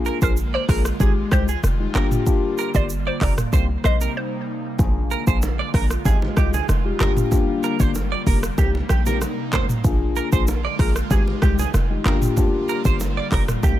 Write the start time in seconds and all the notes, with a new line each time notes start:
Already playing: D3 G#3 A#3 D4 F4 G#4
0.05 A#4, shaker
0.22 A#1 A#3 D4 F4 G#4 A#4 C5, kick, shaker
0.37 shaker
0.54 C5 D5
0.68 A#1 A#3 D4 F4 G#4 A#4, kick, cross-stick, open hi-hat, shaker
0.85 cross-stick, shaker
1.00 G#1 D#3 G3 G#3 D#4 F4 G4 G#4, kick, shaker
1.31 C2 G#3 D#4 F4 G4 C5, kick, cross-stick, shaker
1.48 G#4, shaker
1.63 F1, cross-stick, shaker
1.80 G#3 D#4 F4 G4
1.95 G1 D3 A#3 D4 F4 G4 A#4, cross-stick, clap, shaker
2.11 mid tom, shaker
2.26 A#3 D4 F4 G4, kick, shaker
2.58 A#4, shaker
2.74 G1 A#3 F4 G4 C5 D5, kick, shaker
2.89 shaker
3.07 C5 D5
3.21 F1 A#3 D4 F4 G4 A#4 D5, kick, cross-stick, clap, open hi-hat, shaker
3.38 cross-stick, mid tom, shaker
3.52 C2 C3 G3 A#3 C4 D#4 G4 C5, kick, shaker
3.84 A#1 C5 D#5, cross-stick, shaker
4.01 A#3 C4 D#4 G4 A#4, shaker
4.17 C5
4.79 A#1 D3 G#3 A#3 D4 F4 G#4, kick, low conga, shaker
5.11 A#4, shaker
5.27 A#1 A#3 D4 F4 G#4 C5, kick, shaker
5.42 high bongo, shaker
5.59 D5
5.74 A#1 A#3 D4 F4 G#4 A#4, kick, cross-stick, open hi-hat, shaker
5.90 cross-stick, shaker
6.05 G#1 D#3 G3 G#3 D#4 F4 G4 G#4, kick, high bongo, low conga, shaker
6.22 low bongo
6.37 C2 G#3 D#4 F4 G4, kick, cross-stick, shaker
6.54 G#4, low bongo, shaker
6.69 F1, cross-stick, high bongo, shaker
6.85 G#3 D#4 F4 G4
7.00 G1 D3 A#3 D4 F4 G4 A#4, cross-stick, clap, low conga, shaker
7.17 mid tom, shaker
7.31 A#3 D4 F4 G4, kick, low conga, shaker
7.63 A#4, shaker
7.79 G1 A#3 D4 F4 G4 C5, kick, shaker
7.95 high bongo, shaker
8.12 D5
8.26 F1 A#3 D4 F4 G4 A#4, kick, open hi-hat, shaker
8.43 cross-stick, shaker
8.58 C2 C3 A#3 C4 D#4 G4, kick, high bongo, low conga, shaker
8.75 low bongo
8.89 A#1 G4, cross-stick, shaker
9.06 A#3 C4 D#4 G4 A#4, low bongo, shaker
9.21 cross-stick, high bongo, shaker
9.53 C5, kick, cross-stick, clap, low conga, shaker
9.69 mid tom, shaker
9.84 A#1 D3 G#3 A#3 D4 F4 G#4, kick, low conga, shaker
10.16 A#4, shaker
10.32 A#1 A#3 D4 F4 G#4 C5, kick, shaker
10.47 high bongo, shaker
10.65 D5
10.79 A#1 A#3 D4 F4 G#4 A#4, kick, cross-stick, open hi-hat, shaker
10.96 cross-stick, shaker
11.10 G#1 D#3 G3 G#3 D#4 F4 G4 G#4, kick, high bongo, low conga, shaker
11.28 low bongo
11.42 C2 G#3 D#4 F4 G4, kick, cross-stick, shaker
11.59 G#4, low bongo, shaker
11.74 F1, cross-stick, high bongo, shaker
11.90 G#3 D#4 F4 G4
12.05 G1 D3 G3 A#3 D4 F4 G4 A#4, cross-stick, clap, low conga, shaker
12.22 mid tom, shaker
12.36 A#3 D4 F4 G4, kick, low conga, shaker
12.68 A#4, shaker
12.85 G1 A#3 D4 F4 G4 C5, kick, shaker
13.00 high bongo, shaker
13.17 D5
13.32 F1 A#3 D4 F4 G4 A#4, kick, cross-stick, clap, open hi-hat, shaker
13.48 cross-stick, mid tom, shaker
13.63 C2 C3 A#3 C4 D#4 G4, kick, high tom, high bongo, low conga, shaker